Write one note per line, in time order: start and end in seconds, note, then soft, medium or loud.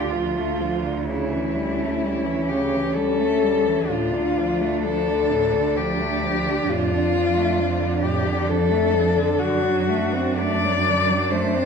0.00 3.86 D2 soft
0.00 0.14 D3 soft
0.00 1.08 F4 soft
0.00 0.13 G4 medium
0.11 0.37 F3 soft
0.11 1.06 F4 medium
0.36 0.61 A3 soft
0.60 0.85 F3 soft
0.84 1.07 D3 soft
1.07 1.33 C#3 soft
1.07 3.89 C#4 soft
1.07 2.51 E4 medium
1.32 1.57 E3 soft
1.56 1.81 G3 soft
1.79 2.04 A3 soft
2.03 2.28 G3 soft
2.26 2.52 E3 soft
2.49 2.74 C#3 soft
2.49 2.96 G4 medium
2.72 2.97 E3 soft
2.95 3.20 G3 soft
2.95 3.91 A4 medium
3.19 3.44 A3 soft
3.43 3.67 G3 soft
3.66 3.89 E3 soft
3.90 6.65 D2 medium
3.90 4.15 A2 soft
3.90 9.34 D4 medium
3.90 4.82 F4 medium
4.14 4.39 D3 soft
4.38 4.63 F3 medium
4.61 4.86 A3 soft
4.83 5.09 F3 soft
4.83 5.79 A4 medium
5.08 5.33 D3 soft
5.31 5.55 A2 medium
5.53 5.78 D3 soft
5.76 6.02 F3 medium
5.76 6.71 G4 medium
6.00 6.25 A3 soft
6.23 6.48 F3 medium
6.47 6.69 D3 soft
6.69 9.40 F2 medium
6.69 6.93 A2 medium
6.69 8.02 F4 medium
6.92 7.15 D3 soft
7.14 7.38 F3 medium
7.36 7.59 A3 medium
7.58 7.82 F3 medium
7.80 8.05 D3 soft
8.02 8.27 A2 medium
8.02 8.49 G4 medium
8.26 8.50 D3 medium
8.48 8.72 F3 medium
8.48 9.40 A4 medium
8.71 8.95 A3 soft
8.94 9.17 F3 medium
9.16 9.38 D3 soft
9.38 11.65 F#2 medium
9.38 9.64 D3 medium
9.38 11.65 D4 medium
9.38 10.40 F#4 medium
9.63 9.90 F#3 medium
9.88 10.15 A3 medium
10.14 10.41 C4 soft
10.39 10.66 A3 medium
10.39 11.32 D5 medium
10.65 10.89 F#3 soft
10.88 11.10 D3 medium
11.09 11.33 F#3 medium
11.30 11.56 A3 medium
11.30 11.65 C5 medium
11.55 11.65 C4 soft